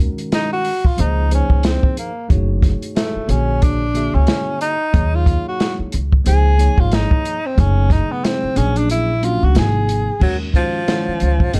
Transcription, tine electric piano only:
0.00 0.69 D#3 medium
0.00 0.70 G#3 medium
0.00 0.70 C#4 medium
0.00 0.71 F#4 medium
0.00 0.71 A#4 medium
0.97 1.25 F3 medium
0.97 1.25 A#3 medium
0.97 1.26 D#4 medium
0.97 1.26 G#4 medium
0.97 1.27 C5 medium
1.29 2.10 F3 medium
1.29 2.10 A#3 medium
1.29 2.10 D#4 medium
1.29 2.11 G#4 medium
1.29 2.11 C5 medium
2.29 3.28 A3 medium
2.29 3.29 D#4 medium
2.29 3.27 F#4 medium
2.29 3.28 G#4 medium
2.29 3.29 C#5 medium
3.27 3.84 D3 medium
3.27 3.83 A#3 medium
3.27 3.84 F#4 medium
3.27 3.84 G#4 medium
3.27 3.85 C#5 medium
3.94 4.74 D3 medium
3.94 4.74 A#3 medium
3.94 4.74 F#4 medium
3.94 4.75 G#4 medium
3.94 4.75 E5 medium
4.93 5.97 F#3 medium
4.93 5.98 A#3 medium
4.93 5.98 D#4 medium
4.93 5.99 G#4 medium
4.93 5.99 C#5 medium
6.24 6.53 F3 medium
6.24 6.53 A#3 medium
6.24 6.54 D#4 medium
6.24 6.54 G#4 medium
6.24 6.54 C5 medium
6.57 7.37 F3 medium
6.57 7.38 A#3 medium
6.57 7.38 D#4 medium
6.57 7.39 G#4 medium
6.57 7.39 C#5 medium
7.56 8.56 C#3 medium
7.56 8.54 F#3 medium
7.56 8.56 A3 medium
7.56 8.57 D#4 medium
7.56 8.56 G#4 medium
8.55 9.11 F#3 medium
8.55 9.11 A#3 medium
8.55 9.11 C#4 medium
8.55 9.12 D4 medium
8.55 9.12 G#4 medium
9.21 9.55 F#3 medium
9.21 9.54 A#3 medium
9.21 9.56 C#4 medium
9.21 9.56 D4 medium
9.21 9.55 F#4 medium
9.54 10.10 C3 medium
9.54 10.10 F3 medium
9.54 10.11 A#3 medium
9.54 10.11 D#4 medium
9.54 9.64 F#4 medium
9.63 10.14 G#4 medium
10.19 10.48 D#3 medium
10.19 10.48 G#3 medium
10.19 10.48 C#4 medium
10.19 10.49 F#4 medium
10.19 10.49 A#4 medium
10.53 10.81 D#3 medium
10.53 10.81 G#3 medium
10.53 10.82 C#4 medium
10.53 10.82 F#4 medium
10.53 10.82 C5 medium
10.87 11.53 D#3 medium
10.87 11.54 G#3 medium
10.87 11.54 C#4 medium
10.87 11.54 C#5 medium
10.87 11.54 F#5 medium
11.52 11.60 C3 medium
11.52 11.60 F3 medium
11.52 11.60 A#3 medium
11.52 11.60 D#4 medium
11.52 11.60 G#4 medium

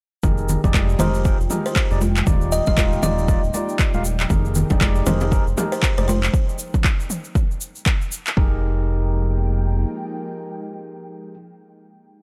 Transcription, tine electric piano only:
0.23 0.60 D#4 medium
0.23 0.60 G4 medium
0.23 0.60 G#4 medium
0.23 0.60 A#4 medium
0.64 0.97 D#4 medium
0.64 0.97 G4 medium
0.64 0.97 G#4 medium
0.64 0.97 D5 loud
0.99 1.23 D#4 medium
0.99 1.23 G4 medium
0.99 1.23 G#4 medium
0.99 1.23 A#4 loud
1.25 1.36 D#4 medium
1.25 1.36 G4 medium
1.25 1.36 G#4 medium
1.25 1.36 A#4 loud
1.50 1.87 D#4 medium
1.50 1.87 G4 medium
1.50 1.87 G#4 medium
1.50 1.87 A#4 medium
1.91 1.99 D#4 medium
1.91 1.99 G4 medium
1.91 1.99 G#4 medium
1.91 1.99 D5 loud
2.27 2.64 D#4 medium
2.27 2.64 F4 medium
2.27 2.64 G4 medium
2.27 2.64 D5 medium
2.67 3.01 D#4 loud
2.67 3.01 F4 medium
2.67 3.01 G4 medium
2.67 3.01 F5 loud
3.03 3.26 D#4 medium
3.03 3.26 F4 medium
3.03 3.26 G4 medium
3.03 3.26 D5 loud
3.28 3.40 D#4 medium
3.28 3.40 F4 medium
3.28 3.40 G4 medium
3.28 3.40 D5 loud
3.54 3.91 D#4 medium
3.54 3.91 F4 medium
3.54 3.91 G4 medium
3.54 3.91 D5 loud
3.94 4.02 D#4 medium
3.94 4.02 F4 medium
3.94 4.02 G4 medium
3.94 4.02 F5 loud
4.30 4.67 D#4 medium
4.30 4.67 G4 medium
4.30 4.67 G#4 medium
4.30 4.67 A#4 medium
4.71 5.04 D#4 loud
4.71 5.04 G4 medium
4.71 5.04 G#4 medium
4.71 5.04 D5 loud
5.06 5.29 D#4 medium
5.06 5.29 G4 medium
5.06 5.29 G#4 medium
5.06 5.29 A#4 loud
5.32 5.43 D#4 medium
5.32 5.43 G4 medium
5.32 5.43 G#4 medium
5.32 5.43 A#4 loud
5.57 5.94 D#4 medium
5.57 5.94 G4 medium
5.57 5.94 G#4 medium
5.57 5.94 A#4 loud
5.98 6.06 D#4 medium
5.98 6.06 G4 medium
5.98 6.05 G#4 medium
5.98 6.06 D5 loud
8.37 11.34 D#4 medium
8.37 11.34 G4 medium
8.37 11.34 G#4 medium
8.37 11.34 A#4 loud

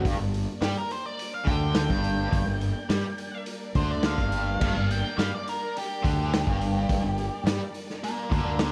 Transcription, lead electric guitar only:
0.64 0.77 G4 medium
0.78 0.91 A#4 medium
0.92 1.06 C5 medium
1.06 1.33 D5 medium
1.34 1.48 F5 medium
1.48 1.75 G5 medium
1.76 3.43 G5 medium
3.76 3.91 C5 medium
3.91 4.04 D5 medium
4.05 4.88 F5 loud
4.91 5.18 G5 medium
5.19 5.32 F5 medium
5.35 5.47 D5 medium
5.49 5.76 A#4 medium
5.78 7.44 G4 medium
8.04 8.31 F4 medium
8.04 8.31 D5 medium
8.32 8.58 F4 medium
8.32 8.60 D5 medium
8.61 8.72 F4 medium
8.61 8.72 D5 medium

